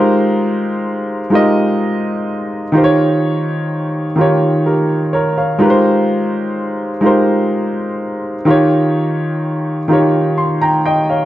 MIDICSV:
0, 0, Header, 1, 2, 480
1, 0, Start_track
1, 0, Key_signature, -4, "major"
1, 0, Tempo, 952381
1, 1381, Time_signature, 6, 3, 24, 8
1, 5671, End_track
2, 0, Start_track
2, 0, Title_t, "Grand piano"
2, 0, Program_c, 0, 0
2, 0, Note_on_c, 0, 56, 81
2, 0, Note_on_c, 0, 63, 69
2, 0, Note_on_c, 0, 65, 72
2, 0, Note_on_c, 0, 67, 70
2, 0, Note_on_c, 0, 70, 74
2, 0, Note_on_c, 0, 72, 83
2, 46, Control_c, 0, 64, 127
2, 600, Note_off_c, 0, 56, 0
2, 602, Note_off_c, 0, 63, 0
2, 605, Note_off_c, 0, 65, 0
2, 607, Note_off_c, 0, 67, 0
2, 610, Note_off_c, 0, 70, 0
2, 612, Note_off_c, 0, 72, 0
2, 656, Note_on_c, 0, 56, 64
2, 661, Note_on_c, 0, 63, 58
2, 667, Note_on_c, 0, 65, 65
2, 673, Note_on_c, 0, 67, 61
2, 677, Note_on_c, 0, 70, 62
2, 682, Note_on_c, 0, 75, 76
2, 1320, Note_off_c, 0, 56, 0
2, 1323, Note_off_c, 0, 63, 0
2, 1325, Note_off_c, 0, 65, 0
2, 1329, Note_off_c, 0, 67, 0
2, 1331, Note_off_c, 0, 70, 0
2, 1333, Note_off_c, 0, 75, 0
2, 1371, Note_on_c, 0, 51, 70
2, 1379, Note_on_c, 0, 63, 70
2, 1386, Note_on_c, 0, 65, 65
2, 1387, Control_c, 0, 64, 0
2, 1392, Note_on_c, 0, 67, 63
2, 1399, Note_on_c, 0, 72, 65
2, 1423, Note_off_c, 0, 72, 0
2, 1431, Note_on_c, 0, 73, 89
2, 1466, Control_c, 0, 64, 127
2, 2037, Note_off_c, 0, 51, 0
2, 2041, Note_off_c, 0, 63, 0
2, 2045, Note_off_c, 0, 65, 0
2, 2048, Note_off_c, 0, 67, 0
2, 2068, Note_off_c, 0, 73, 0
2, 2095, Note_on_c, 0, 51, 67
2, 2101, Note_on_c, 0, 63, 61
2, 2108, Note_on_c, 0, 65, 59
2, 2116, Note_on_c, 0, 67, 59
2, 2122, Note_on_c, 0, 73, 70
2, 2344, Note_off_c, 0, 67, 0
2, 2348, Note_on_c, 0, 70, 53
2, 2351, Note_on_c, 0, 67, 47
2, 2352, Note_off_c, 0, 73, 0
2, 2573, Note_off_c, 0, 70, 0
2, 2575, Note_off_c, 0, 67, 0
2, 2586, Note_on_c, 0, 73, 65
2, 2592, Note_on_c, 0, 70, 56
2, 2698, Note_off_c, 0, 73, 0
2, 2701, Note_off_c, 0, 70, 0
2, 2709, Note_on_c, 0, 77, 52
2, 2711, Note_on_c, 0, 73, 43
2, 2759, Note_off_c, 0, 51, 0
2, 2763, Note_off_c, 0, 63, 0
2, 2766, Note_off_c, 0, 65, 0
2, 2815, Note_on_c, 0, 56, 69
2, 2820, Note_on_c, 0, 63, 71
2, 2824, Note_on_c, 0, 65, 67
2, 2829, Control_c, 0, 64, 0
2, 2830, Note_on_c, 0, 67, 65
2, 2833, Note_on_c, 0, 70, 63
2, 2840, Note_on_c, 0, 71, 65
2, 2863, Note_off_c, 0, 71, 0
2, 2873, Note_on_c, 0, 72, 81
2, 2903, Control_c, 0, 64, 127
2, 2934, Note_off_c, 0, 73, 0
2, 2934, Note_off_c, 0, 77, 0
2, 3480, Note_off_c, 0, 56, 0
2, 3482, Note_off_c, 0, 63, 0
2, 3484, Note_off_c, 0, 65, 0
2, 3487, Note_off_c, 0, 67, 0
2, 3489, Note_off_c, 0, 70, 0
2, 3509, Note_off_c, 0, 72, 0
2, 3532, Note_on_c, 0, 56, 66
2, 3538, Note_on_c, 0, 63, 60
2, 3545, Note_on_c, 0, 65, 56
2, 3549, Note_on_c, 0, 67, 57
2, 3553, Note_on_c, 0, 70, 57
2, 3559, Note_on_c, 0, 72, 78
2, 4198, Note_off_c, 0, 56, 0
2, 4201, Note_off_c, 0, 63, 0
2, 4205, Note_off_c, 0, 65, 0
2, 4207, Note_off_c, 0, 67, 0
2, 4209, Note_off_c, 0, 70, 0
2, 4212, Note_off_c, 0, 72, 0
2, 4260, Note_on_c, 0, 51, 79
2, 4266, Note_on_c, 0, 63, 69
2, 4268, Control_c, 0, 64, 0
2, 4272, Note_on_c, 0, 65, 70
2, 4279, Note_on_c, 0, 67, 71
2, 4287, Note_on_c, 0, 73, 80
2, 4367, Control_c, 0, 64, 127
2, 4922, Note_off_c, 0, 51, 0
2, 4925, Note_off_c, 0, 63, 0
2, 4928, Note_off_c, 0, 65, 0
2, 4932, Note_off_c, 0, 67, 0
2, 4935, Note_off_c, 0, 73, 0
2, 4979, Note_on_c, 0, 51, 70
2, 4985, Note_on_c, 0, 63, 67
2, 4991, Note_on_c, 0, 65, 63
2, 4997, Note_on_c, 0, 67, 61
2, 5005, Note_on_c, 0, 73, 68
2, 5230, Note_on_c, 0, 84, 53
2, 5233, Note_off_c, 0, 73, 0
2, 5340, Note_off_c, 0, 84, 0
2, 5350, Note_on_c, 0, 82, 65
2, 5355, Note_on_c, 0, 79, 54
2, 5460, Note_off_c, 0, 82, 0
2, 5462, Note_off_c, 0, 79, 0
2, 5471, Note_on_c, 0, 79, 65
2, 5475, Note_on_c, 0, 75, 54
2, 5581, Note_off_c, 0, 79, 0
2, 5583, Note_off_c, 0, 75, 0
2, 5592, Note_on_c, 0, 77, 52
2, 5596, Note_on_c, 0, 73, 47
2, 5642, Note_off_c, 0, 51, 0
2, 5644, Note_off_c, 0, 63, 0
2, 5648, Note_off_c, 0, 65, 0
2, 5651, Note_off_c, 0, 67, 0
2, 5671, Note_off_c, 0, 73, 0
2, 5671, Note_off_c, 0, 77, 0
2, 5671, End_track
0, 0, End_of_file